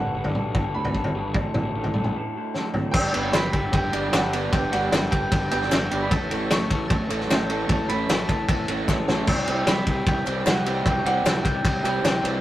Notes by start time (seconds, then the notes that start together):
Already playing: G1 G3 B3 D4 A4 F#5
0.14 G1 G3 B3 D4 A4
0.24 D5, floor tom
0.34 B1 G3 B3 D4 A4, mid tom
0.54 G1 G3 B3 D4 A4 G5, kick, floor tom
0.74 D2 G3 B3 D4 A4 B5
0.85 floor tom
0.93 G1 G3 B3 D4 A4, kick
1.04 floor tom
1.14 G1 G3 B3 D4 A4
1.34 A1 A2 D3 A3 E4 A4 A5, kick, floor tom
1.54 A1 A2 D3 A3 E4 A4, floor tom, mid tom
1.75 A1 A2 D3 A3 E4 A4
1.84 floor tom
1.94 A1 A2 D3 A3 E4 A4, mid tom
2.04 mid tom
2.15 A2 D3 A3 E4 A4
2.35 A2 D3 A3 E4 A4
2.54 A2 D3 A3 E4 A4, snare
2.74 A2 D3 A3 E4 A4, floor tom
2.91 G1 G2 D3 G3 B3 G4 D5 G5 B5 D6 G6, kick, crash
2.96 D4 G4
3.14 G1 G3 B3 D4 G4, ride
3.32 G1 G3 B3 D4 G4 B5 B6, snare, clap, ride
3.53 G1 G3 B3 D4 G4, kick, ride
3.72 G1 G5 G6, kick, ride
3.93 G1 G3 B3 D4 G4, clap, ride
4.12 G1 G2 D3 G3 B3 D4 G4 F#5 F#6, snare, clap, ride
4.32 G3 B3 D4 G4, ride
4.52 G1 G2 D3 G3 B3 D4 G4 G5 G6, kick, ride
4.72 G1 G3 B3 D4 G4 F#5 F#6, ride
4.92 G1 G3 B3 D4 G4, snare, clap, ride
5.11 G1 G3 B3 D4 G4 G5 G6, kick, ride
5.32 G1, kick, ride
5.51 G1 G3 B3 D4 G4 G5 G6, clap, ride
5.62 snare
5.71 G1 G2 D3 G3 B3 D4 G4, snare, clap, ride
5.90 G1 G3 B3 D4 G4, ride
6.02 B5 B6
6.10 A1 A2 E3 A3 C#4 A4 E5 A5 C#6 E6 A6, kick, ride
6.31 A1 E3 A3 C#4 A4, ride
6.50 A1 E3 A3 C#4 A4 C#6 C#7, snare, clap, ride
6.70 A1 A3 C#4 A4, kick, ride
6.88 A1 A5 A6, kick, ride
7.10 A1 E3 A3 C#4 A4, clap, ride
7.20 snare
7.29 A1 A2 E3 A3 C#4 A4 G5 G6, snare, clap, ride
7.49 E3 A3 C#4 A4, ride
7.68 A1 A2 E3 A3 C#4 A4 A5 A6, kick, ride
7.87 A1 E3 A3 C#4 A4 B5 B6, ride
8.08 A1 E3 A3 C#4 A4, snare, clap, ride
8.28 A1 A3 C#4 A4 A5 A6, kick, ride
8.49 A1 A5 A6, kick, ride
8.68 A1 E3 A3 C#4 A4, ride
8.87 A1 A2 E3 A3 C#4 A4, kick, snare, clap
9.07 A1 E3 A3 C#4 A4, snare
9.27 C2 C3 E3 G3 C4 G4 C5 G5 G6, kick, crash
9.47 C2 E3 G3 C4 G4, ride
9.67 C2 C4 G4 B5 B6, snare, clap, ride
9.86 C2 G3 C4 G4, kick, ride
10.06 C2 G5 G6, kick, ride
10.26 C2 E3 G3 C4 G4, clap, ride
10.45 C2 C3 E3 G3 C4 G4 F#5 F#6, snare, clap, ride
10.66 E3 G3 C4 G4, ride
10.86 C2 C3 E3 G3 C4 G4 G5 G6, kick, ride
10.97 G5 G6
11.05 C2 E3 G3 C4 G4 F#5 F#6, ride
11.24 C2 E3 G3 C4 G4, snare, clap, ride
11.35 A5 A6
11.43 C2 G4 G5 G6, kick, ride
11.47 G3 C4
11.64 C2, kick, ride
11.84 C2 E3 G3 C4 G4 G5 G6, clap, ride
12.04 C2 C3 E3 G3 C4 G4, snare, clap, ride
12.24 C2 E3 G3 C4 G4, ride